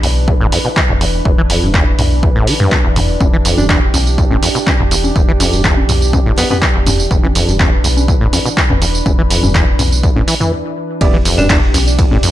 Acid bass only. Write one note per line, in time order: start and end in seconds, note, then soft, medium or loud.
0.03 0.08 E2 medium
0.28 0.35 E2 medium
0.40 0.47 A2 loud
0.52 0.59 F2 medium
0.65 0.69 B2 medium
0.77 0.81 E3 medium
0.89 0.93 E2 medium
1.01 1.05 E2 medium
1.25 1.32 E2 medium
1.38 1.42 E3 loud
1.50 1.64 F2 medium
1.62 1.72 G2 loud
1.74 1.85 E2 loud
1.99 2.03 E2 medium
2.23 2.30 E2 medium
2.36 2.49 A2 loud
2.47 2.54 E3 medium
2.60 2.73 G2 loud
2.72 2.79 E2 medium
2.84 2.88 E2 medium
2.96 3.00 E2 medium
3.21 3.27 E2 medium
3.33 3.37 E3 loud
3.45 3.59 F2 medium
3.58 3.67 G2 loud
3.69 3.80 E2 loud
3.94 3.98 E2 medium
4.18 4.25 E2 medium
4.31 4.37 A2 loud
4.42 4.49 F2 medium
4.55 4.59 B2 medium
4.67 4.71 E3 medium
4.80 4.83 E2 medium
4.91 4.96 E2 medium
5.16 5.23 E2 medium
5.28 5.32 E3 loud
5.40 5.54 F2 medium
5.53 5.62 G2 loud
5.64 5.75 E2 loud
5.89 5.93 E2 medium
6.13 6.20 E2 medium
6.26 6.32 A2 loud
6.38 6.45 F2 medium
6.50 6.54 B2 medium
6.62 6.66 E3 medium
6.75 6.79 E2 medium
6.86 6.91 E2 medium
7.11 7.18 E2 medium
7.23 7.27 E3 loud
7.35 7.49 F2 medium
7.48 7.58 G2 loud
7.60 7.70 E2 loud
7.84 7.88 E2 medium
8.08 8.15 E2 medium
8.21 8.27 A2 loud
8.33 8.40 F2 medium
8.45 8.49 B2 medium
8.57 8.61 E3 medium
8.70 8.74 E2 medium
8.82 8.86 E2 medium
9.06 9.13 E2 medium
9.18 9.22 E3 loud
9.30 9.44 F2 medium
9.43 9.53 G2 loud
9.55 9.65 E2 loud
9.79 9.83 E2 medium
10.03 10.10 E2 medium
10.16 10.23 A2 loud
10.28 10.35 E3 medium
10.40 10.52 E3 medium
11.01 11.08 E2 medium
11.14 11.18 E3 loud
11.26 11.40 F2 medium
11.38 11.48 G2 loud
11.50 11.60 E2 loud
11.74 11.78 E2 medium
11.99 12.06 E2 medium
12.11 12.18 A2 loud
12.23 12.30 F2 medium